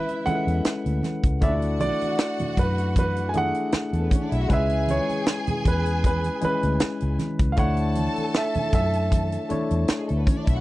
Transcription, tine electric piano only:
Already playing: G#3 C#4 E4 B4
0.26 G#3 C#4 E4 A4
0.35 B4
1.41 A3 C#4 E4 D5
1.48 D4
3.34 A3 D4 E4 G#4
4.48 G#3 C#4 E4 B4
6.41 G#3 C#4 E4 B4
7.56 A3 D4 E4 C#5
9.49 A3 D4 E4 C#5

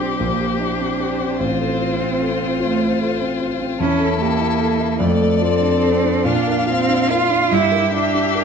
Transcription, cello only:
Already playing: C4
0.19 A#3
0.59 D4
1.40 C4
2.62 A3
3.80 C#4
4.21 A#3
5.01 A3
5.42 C4
6.26 D4
6.69 C4
7.10 F4
7.54 E4
7.94 D4

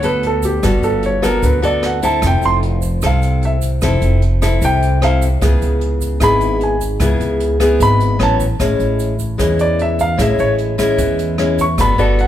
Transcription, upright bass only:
Already playing: D2
0.63 G1
0.83 G1
1.43 D2
2.22 F1
2.42 F1
3.03 C2
3.82 F1
4.02 F1
4.62 C2
5.42 C#2
5.61 C#2
6.21 G#1
7.00 C#2
7.20 C#2
7.80 G#1
8.19 A1
8.59 A1
8.79 A1
9.39 E2
10.19 A1
10.39 A1
10.99 E2
11.78 G1
11.98 G1

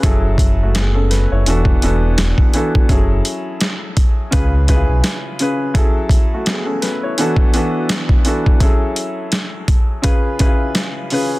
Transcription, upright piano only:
0.03 F#3 C#4 E4 G#4 A4
0.62 A3 F#4
0.76 B3 G#4
0.94 C#4 A4
1.10 B4
1.32 E4 C#5
1.47 E3 B3 D4 F#4 A4
1.82 E3 B3 D4 F#4 A4
2.54 E3 B3 D4 F#4 A4
2.89 F#3 C#4 E4 G#4 A4
4.31 C#3 C#4 F4 G#4 B4
4.68 C#3 C#4 E4 G#4 B4
4.75 F4
5.40 C#3 C#4 F4 G#4 B4
5.74 F#3 C#4 E4 G#4 A4
6.34 A3 F#4
6.48 B3 G#4
6.65 C#4 A4
6.82 B4
7.03 E4 C#5
7.18 E3 B3 D4 F#4 A4
7.54 E3 B3 D4 F#4 A4
8.25 E3 B3 D4 F#4 A4
8.60 F#3 C#4 E4 G#4 A4
10.02 C#3 C#4 F4 G#4 B4
10.39 C#3 C#4 E4 G#4 B4
10.46 F4
11.11 C#3 C#4 F4 G#4 B4

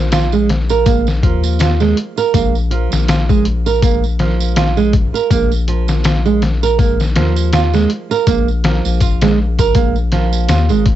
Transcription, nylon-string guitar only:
Already playing: F3
0.12 F4
0.33 G#3
0.70 A#4
0.86 A#3
1.23 F3
1.60 F4
1.80 G#3
2.18 A#4
2.34 A#3
2.71 F3
3.08 F4
3.29 G#3
3.66 A#4
3.82 A#3
4.20 F3
4.56 F4
4.77 G#3
5.14 A#4
5.30 A#3
5.68 F3
6.04 F4
6.26 G#3
6.63 A#4
6.78 A#3
7.16 F3
7.53 F4
7.74 G#3
8.11 A#4
8.27 A#3
8.64 F3
9.01 F4
9.22 G#3
9.59 A#4
9.75 A#3
10.12 F3
10.49 F4
10.70 G#3

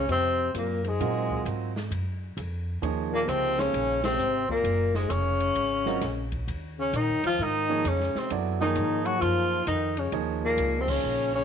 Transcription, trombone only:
0.09 C3
0.54 A#2
0.84 G#2
3.12 A#2
3.27 C3
3.58 C#3
4.04 C3
4.49 A#2
4.95 G#2
5.10 C#3
6.79 C#3
6.95 D#3
7.25 F3
7.41 D#3
7.86 C#3
8.16 C3
8.60 D#3
9.04 F#3
9.20 F3
9.66 D#3
9.97 C#3
10.43 A#2
10.79 C3
10.89 C#3
11.36 C#3

